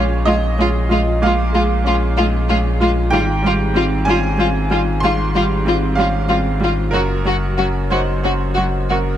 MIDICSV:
0, 0, Header, 1, 5, 480
1, 0, Start_track
1, 0, Tempo, 634921
1, 923, Time_signature, 6, 3, 24, 8
1, 5234, Tempo, 660793
1, 6869, End_track
2, 0, Start_track
2, 0, Title_t, "Violin section"
2, 0, Program_c, 0, 48
2, 195, Note_on_c, 0, 65, 50
2, 255, Note_off_c, 0, 65, 0
2, 452, Note_on_c, 0, 65, 58
2, 513, Note_off_c, 0, 65, 0
2, 697, Note_on_c, 0, 65, 50
2, 757, Note_off_c, 0, 65, 0
2, 942, Note_on_c, 0, 65, 48
2, 1003, Note_off_c, 0, 65, 0
2, 1167, Note_on_c, 0, 65, 56
2, 1228, Note_off_c, 0, 65, 0
2, 1413, Note_on_c, 0, 65, 56
2, 1473, Note_off_c, 0, 65, 0
2, 1644, Note_on_c, 0, 65, 60
2, 1705, Note_off_c, 0, 65, 0
2, 1888, Note_on_c, 0, 65, 56
2, 1948, Note_off_c, 0, 65, 0
2, 2131, Note_on_c, 0, 65, 52
2, 2192, Note_off_c, 0, 65, 0
2, 2364, Note_on_c, 0, 65, 57
2, 2424, Note_off_c, 0, 65, 0
2, 2612, Note_on_c, 0, 65, 59
2, 2672, Note_off_c, 0, 65, 0
2, 2845, Note_on_c, 0, 65, 59
2, 2906, Note_off_c, 0, 65, 0
2, 3097, Note_on_c, 0, 65, 60
2, 3157, Note_off_c, 0, 65, 0
2, 3327, Note_on_c, 0, 65, 54
2, 3388, Note_off_c, 0, 65, 0
2, 3567, Note_on_c, 0, 65, 52
2, 3627, Note_off_c, 0, 65, 0
2, 3811, Note_on_c, 0, 65, 56
2, 3871, Note_off_c, 0, 65, 0
2, 4053, Note_on_c, 0, 65, 58
2, 4114, Note_off_c, 0, 65, 0
2, 4289, Note_on_c, 0, 65, 50
2, 4350, Note_off_c, 0, 65, 0
2, 4524, Note_on_c, 0, 65, 51
2, 4584, Note_off_c, 0, 65, 0
2, 4761, Note_on_c, 0, 65, 51
2, 4822, Note_off_c, 0, 65, 0
2, 5012, Note_on_c, 0, 65, 50
2, 5072, Note_off_c, 0, 65, 0
2, 5243, Note_on_c, 0, 66, 50
2, 5301, Note_off_c, 0, 66, 0
2, 5484, Note_on_c, 0, 66, 54
2, 5542, Note_off_c, 0, 66, 0
2, 5709, Note_on_c, 0, 66, 44
2, 5767, Note_off_c, 0, 66, 0
2, 5953, Note_on_c, 0, 66, 51
2, 6011, Note_off_c, 0, 66, 0
2, 6191, Note_on_c, 0, 66, 45
2, 6249, Note_off_c, 0, 66, 0
2, 6423, Note_on_c, 0, 66, 45
2, 6481, Note_off_c, 0, 66, 0
2, 6662, Note_on_c, 0, 66, 42
2, 6720, Note_off_c, 0, 66, 0
2, 6869, End_track
3, 0, Start_track
3, 0, Title_t, "Upright piano"
3, 0, Program_c, 1, 0
3, 0, Control_c, 1, 64, 127
3, 0, Note_on_c, 1, 46, 59
3, 0, Note_on_c, 1, 56, 45
3, 0, Note_on_c, 1, 61, 48
3, 0, Note_on_c, 1, 73, 82
3, 107, Note_off_c, 1, 56, 0
3, 167, Note_off_c, 1, 73, 0
3, 192, Note_on_c, 1, 75, 91
3, 203, Note_on_c, 1, 63, 42
3, 347, Note_off_c, 1, 61, 0
3, 443, Note_off_c, 1, 63, 0
3, 445, Note_on_c, 1, 61, 39
3, 673, Note_on_c, 1, 65, 52
3, 830, Note_off_c, 1, 61, 0
3, 891, Note_off_c, 1, 75, 0
3, 899, Note_off_c, 1, 46, 0
3, 921, Note_on_c, 1, 46, 65
3, 928, Note_on_c, 1, 77, 82
3, 938, Control_c, 1, 64, 0
3, 1064, Note_off_c, 1, 65, 0
3, 1078, Control_c, 1, 64, 127
3, 1153, Note_on_c, 1, 56, 52
3, 1395, Note_on_c, 1, 61, 56
3, 1544, Note_off_c, 1, 56, 0
3, 1619, Note_off_c, 1, 77, 0
3, 1644, Note_on_c, 1, 63, 42
3, 1785, Note_off_c, 1, 61, 0
3, 1880, Note_on_c, 1, 61, 44
3, 1885, Note_off_c, 1, 63, 0
3, 2120, Note_on_c, 1, 65, 56
3, 2264, Note_off_c, 1, 61, 0
3, 2330, Note_off_c, 1, 46, 0
3, 2347, Note_on_c, 1, 79, 88
3, 2348, Note_on_c, 1, 44, 64
3, 2359, Note_off_c, 1, 65, 0
3, 2374, Control_c, 1, 64, 0
3, 2509, Control_c, 1, 64, 127
3, 2589, Note_on_c, 1, 55, 50
3, 2826, Note_on_c, 1, 60, 55
3, 2974, Note_off_c, 1, 55, 0
3, 3037, Note_off_c, 1, 79, 0
3, 3063, Note_on_c, 1, 80, 83
3, 3066, Note_on_c, 1, 61, 43
3, 3213, Note_off_c, 1, 60, 0
3, 3309, Note_off_c, 1, 61, 0
3, 3315, Note_on_c, 1, 60, 44
3, 3557, Note_on_c, 1, 65, 53
3, 3698, Note_off_c, 1, 60, 0
3, 3757, Note_off_c, 1, 44, 0
3, 3758, Note_off_c, 1, 80, 0
3, 3783, Note_on_c, 1, 84, 82
3, 3805, Note_on_c, 1, 44, 63
3, 3808, Control_c, 1, 64, 0
3, 3918, Control_c, 1, 64, 127
3, 3941, Note_off_c, 1, 65, 0
3, 4046, Note_on_c, 1, 55, 50
3, 4269, Note_on_c, 1, 60, 50
3, 4424, Note_off_c, 1, 55, 0
3, 4478, Note_off_c, 1, 84, 0
3, 4501, Note_on_c, 1, 77, 78
3, 4505, Note_on_c, 1, 61, 44
3, 4654, Note_off_c, 1, 60, 0
3, 4748, Note_off_c, 1, 61, 0
3, 4754, Note_on_c, 1, 60, 43
3, 4995, Note_on_c, 1, 65, 41
3, 5137, Note_off_c, 1, 60, 0
3, 5197, Note_off_c, 1, 77, 0
3, 5209, Note_off_c, 1, 44, 0
3, 5223, Note_on_c, 1, 70, 73
3, 5236, Note_off_c, 1, 65, 0
3, 5240, Note_on_c, 1, 42, 54
3, 5249, Control_c, 1, 64, 0
3, 5381, Control_c, 1, 64, 127
3, 5480, Note_on_c, 1, 54, 44
3, 5715, Note_on_c, 1, 61, 42
3, 5855, Note_off_c, 1, 54, 0
3, 5911, Note_off_c, 1, 70, 0
3, 5947, Note_on_c, 1, 72, 68
3, 5959, Note_on_c, 1, 63, 38
3, 6092, Note_off_c, 1, 61, 0
3, 6191, Note_off_c, 1, 63, 0
3, 6193, Note_on_c, 1, 61, 32
3, 6434, Note_on_c, 1, 66, 38
3, 6576, Note_off_c, 1, 61, 0
3, 6642, Note_off_c, 1, 72, 0
3, 6644, Note_off_c, 1, 42, 0
3, 6677, Note_on_c, 1, 42, 46
3, 6677, Note_on_c, 1, 70, 54
3, 6684, Control_c, 1, 64, 0
3, 6793, Control_c, 1, 64, 127
3, 6822, Note_off_c, 1, 66, 0
3, 6869, Note_off_c, 1, 42, 0
3, 6869, Note_off_c, 1, 70, 0
3, 6869, End_track
4, 0, Start_track
4, 0, Title_t, "Viola"
4, 0, Program_c, 2, 41
4, 198, Note_on_c, 2, 56, 58
4, 258, Note_off_c, 2, 56, 0
4, 440, Note_on_c, 2, 56, 54
4, 501, Note_off_c, 2, 56, 0
4, 684, Note_on_c, 2, 56, 50
4, 745, Note_off_c, 2, 56, 0
4, 926, Note_on_c, 2, 56, 54
4, 986, Note_off_c, 2, 56, 0
4, 1167, Note_on_c, 2, 56, 50
4, 1227, Note_off_c, 2, 56, 0
4, 1413, Note_on_c, 2, 56, 44
4, 1474, Note_off_c, 2, 56, 0
4, 1652, Note_on_c, 2, 56, 58
4, 1713, Note_off_c, 2, 56, 0
4, 1890, Note_on_c, 2, 56, 58
4, 1950, Note_off_c, 2, 56, 0
4, 2126, Note_on_c, 2, 56, 61
4, 2187, Note_off_c, 2, 56, 0
4, 2364, Note_on_c, 2, 55, 59
4, 2425, Note_off_c, 2, 55, 0
4, 2600, Note_on_c, 2, 55, 47
4, 2660, Note_off_c, 2, 55, 0
4, 2834, Note_on_c, 2, 55, 49
4, 2894, Note_off_c, 2, 55, 0
4, 3073, Note_on_c, 2, 55, 60
4, 3134, Note_off_c, 2, 55, 0
4, 3308, Note_on_c, 2, 55, 49
4, 3369, Note_off_c, 2, 55, 0
4, 3554, Note_on_c, 2, 55, 55
4, 3615, Note_off_c, 2, 55, 0
4, 3803, Note_on_c, 2, 55, 55
4, 3864, Note_off_c, 2, 55, 0
4, 4043, Note_on_c, 2, 55, 43
4, 4104, Note_off_c, 2, 55, 0
4, 4282, Note_on_c, 2, 55, 50
4, 4343, Note_off_c, 2, 55, 0
4, 4519, Note_on_c, 2, 55, 56
4, 4579, Note_off_c, 2, 55, 0
4, 4756, Note_on_c, 2, 55, 49
4, 4817, Note_off_c, 2, 55, 0
4, 4990, Note_on_c, 2, 55, 51
4, 5051, Note_off_c, 2, 55, 0
4, 5237, Note_on_c, 2, 54, 55
4, 5295, Note_off_c, 2, 54, 0
4, 5473, Note_on_c, 2, 54, 42
4, 5531, Note_off_c, 2, 54, 0
4, 5717, Note_on_c, 2, 54, 43
4, 5775, Note_off_c, 2, 54, 0
4, 5947, Note_on_c, 2, 54, 52
4, 6005, Note_off_c, 2, 54, 0
4, 6190, Note_on_c, 2, 54, 44
4, 6248, Note_off_c, 2, 54, 0
4, 6430, Note_on_c, 2, 54, 46
4, 6489, Note_off_c, 2, 54, 0
4, 6671, Note_on_c, 2, 54, 41
4, 6729, Note_off_c, 2, 54, 0
4, 6869, End_track
5, 0, Start_track
5, 0, Title_t, "Sub bass"
5, 0, Program_c, 3, 38
5, 0, Note_on_c, 3, 34, 55
5, 2360, Note_on_c, 3, 32, 55
5, 2371, Note_off_c, 3, 34, 0
5, 5227, Note_on_c, 3, 30, 59
5, 5239, Note_off_c, 3, 32, 0
5, 6869, Note_off_c, 3, 30, 0
5, 6869, End_track
0, 0, End_of_file